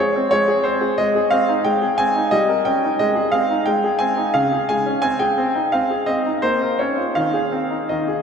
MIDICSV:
0, 0, Header, 1, 2, 480
1, 0, Start_track
1, 0, Key_signature, -4, "major"
1, 0, Tempo, 674157
1, 709, Time_signature, 3, 2, 24, 8
1, 4071, Tempo, 730816
1, 5715, End_track
2, 0, Start_track
2, 0, Title_t, "Grand piano"
2, 0, Program_c, 0, 0
2, 0, Note_on_c, 0, 68, 37
2, 0, Note_on_c, 0, 73, 66
2, 112, Note_on_c, 0, 60, 37
2, 115, Note_off_c, 0, 68, 0
2, 209, Note_off_c, 0, 73, 0
2, 219, Note_on_c, 0, 73, 81
2, 230, Note_on_c, 0, 56, 45
2, 236, Note_off_c, 0, 60, 0
2, 342, Note_on_c, 0, 68, 39
2, 344, Note_off_c, 0, 56, 0
2, 452, Note_on_c, 0, 72, 55
2, 460, Note_on_c, 0, 60, 39
2, 463, Note_off_c, 0, 73, 0
2, 471, Note_off_c, 0, 68, 0
2, 577, Note_on_c, 0, 68, 35
2, 590, Note_off_c, 0, 60, 0
2, 676, Note_off_c, 0, 72, 0
2, 696, Note_on_c, 0, 75, 71
2, 702, Note_on_c, 0, 56, 46
2, 703, Note_off_c, 0, 68, 0
2, 820, Note_on_c, 0, 68, 40
2, 823, Note_off_c, 0, 56, 0
2, 929, Note_on_c, 0, 77, 78
2, 937, Note_on_c, 0, 60, 39
2, 944, Note_off_c, 0, 75, 0
2, 951, Note_off_c, 0, 68, 0
2, 1059, Note_on_c, 0, 63, 37
2, 1069, Note_off_c, 0, 60, 0
2, 1079, Note_off_c, 0, 77, 0
2, 1171, Note_on_c, 0, 79, 72
2, 1178, Note_on_c, 0, 56, 42
2, 1190, Note_off_c, 0, 63, 0
2, 1293, Note_on_c, 0, 68, 35
2, 1299, Note_off_c, 0, 56, 0
2, 1408, Note_on_c, 0, 80, 82
2, 1416, Note_on_c, 0, 60, 38
2, 1419, Note_off_c, 0, 79, 0
2, 1426, Note_off_c, 0, 68, 0
2, 1537, Note_on_c, 0, 63, 36
2, 1547, Note_off_c, 0, 60, 0
2, 1631, Note_off_c, 0, 80, 0
2, 1646, Note_on_c, 0, 75, 76
2, 1651, Note_on_c, 0, 55, 51
2, 1661, Note_off_c, 0, 63, 0
2, 1771, Note_on_c, 0, 70, 39
2, 1774, Note_off_c, 0, 55, 0
2, 1888, Note_on_c, 0, 79, 68
2, 1890, Note_on_c, 0, 61, 33
2, 1893, Note_off_c, 0, 75, 0
2, 1902, Note_off_c, 0, 70, 0
2, 2021, Note_off_c, 0, 61, 0
2, 2021, Note_on_c, 0, 63, 37
2, 2108, Note_off_c, 0, 79, 0
2, 2131, Note_on_c, 0, 75, 69
2, 2138, Note_on_c, 0, 56, 46
2, 2140, Note_off_c, 0, 63, 0
2, 2245, Note_on_c, 0, 68, 39
2, 2255, Note_off_c, 0, 56, 0
2, 2361, Note_on_c, 0, 77, 72
2, 2368, Note_on_c, 0, 60, 37
2, 2374, Note_off_c, 0, 75, 0
2, 2377, Note_off_c, 0, 68, 0
2, 2495, Note_on_c, 0, 63, 35
2, 2498, Note_off_c, 0, 60, 0
2, 2603, Note_on_c, 0, 79, 71
2, 2607, Note_off_c, 0, 77, 0
2, 2615, Note_on_c, 0, 56, 42
2, 2621, Note_off_c, 0, 63, 0
2, 2731, Note_off_c, 0, 56, 0
2, 2733, Note_on_c, 0, 68, 36
2, 2838, Note_on_c, 0, 80, 74
2, 2847, Note_on_c, 0, 60, 37
2, 2848, Note_off_c, 0, 79, 0
2, 2859, Note_off_c, 0, 68, 0
2, 2968, Note_on_c, 0, 63, 38
2, 2977, Note_off_c, 0, 60, 0
2, 3087, Note_off_c, 0, 80, 0
2, 3088, Note_on_c, 0, 77, 74
2, 3092, Note_off_c, 0, 63, 0
2, 3094, Note_on_c, 0, 49, 50
2, 3213, Note_off_c, 0, 49, 0
2, 3220, Note_on_c, 0, 68, 35
2, 3335, Note_off_c, 0, 77, 0
2, 3338, Note_on_c, 0, 80, 66
2, 3346, Note_off_c, 0, 68, 0
2, 3346, Note_on_c, 0, 56, 34
2, 3461, Note_on_c, 0, 61, 34
2, 3470, Note_off_c, 0, 56, 0
2, 3484, Note_off_c, 0, 80, 0
2, 3572, Note_on_c, 0, 80, 81
2, 3577, Note_on_c, 0, 60, 46
2, 3582, Note_off_c, 0, 61, 0
2, 3696, Note_off_c, 0, 60, 0
2, 3698, Note_off_c, 0, 80, 0
2, 3699, Note_on_c, 0, 79, 71
2, 3702, Note_on_c, 0, 68, 37
2, 3829, Note_on_c, 0, 60, 37
2, 3830, Note_off_c, 0, 68, 0
2, 3952, Note_on_c, 0, 63, 32
2, 3956, Note_off_c, 0, 60, 0
2, 4070, Note_off_c, 0, 79, 0
2, 4074, Note_on_c, 0, 77, 63
2, 4080, Note_off_c, 0, 63, 0
2, 4080, Note_on_c, 0, 60, 38
2, 4188, Note_off_c, 0, 60, 0
2, 4193, Note_on_c, 0, 68, 31
2, 4298, Note_on_c, 0, 75, 65
2, 4303, Note_on_c, 0, 60, 35
2, 4305, Note_off_c, 0, 77, 0
2, 4313, Note_off_c, 0, 68, 0
2, 4426, Note_off_c, 0, 60, 0
2, 4429, Note_on_c, 0, 63, 31
2, 4441, Note_off_c, 0, 75, 0
2, 4533, Note_on_c, 0, 72, 70
2, 4538, Note_on_c, 0, 58, 45
2, 4542, Note_off_c, 0, 63, 0
2, 4653, Note_off_c, 0, 58, 0
2, 4665, Note_on_c, 0, 70, 32
2, 4774, Note_off_c, 0, 72, 0
2, 4774, Note_on_c, 0, 73, 47
2, 4782, Note_on_c, 0, 61, 32
2, 4787, Note_off_c, 0, 70, 0
2, 4894, Note_on_c, 0, 65, 31
2, 4907, Note_off_c, 0, 61, 0
2, 4921, Note_off_c, 0, 73, 0
2, 5013, Note_on_c, 0, 77, 65
2, 5016, Note_on_c, 0, 51, 41
2, 5018, Note_off_c, 0, 65, 0
2, 5134, Note_on_c, 0, 68, 35
2, 5138, Note_off_c, 0, 51, 0
2, 5253, Note_on_c, 0, 60, 32
2, 5267, Note_off_c, 0, 68, 0
2, 5376, Note_on_c, 0, 63, 29
2, 5387, Note_off_c, 0, 60, 0
2, 5479, Note_off_c, 0, 77, 0
2, 5499, Note_on_c, 0, 75, 47
2, 5506, Note_on_c, 0, 51, 37
2, 5509, Note_off_c, 0, 63, 0
2, 5624, Note_on_c, 0, 68, 30
2, 5625, Note_off_c, 0, 51, 0
2, 5715, Note_off_c, 0, 68, 0
2, 5715, Note_off_c, 0, 75, 0
2, 5715, End_track
0, 0, End_of_file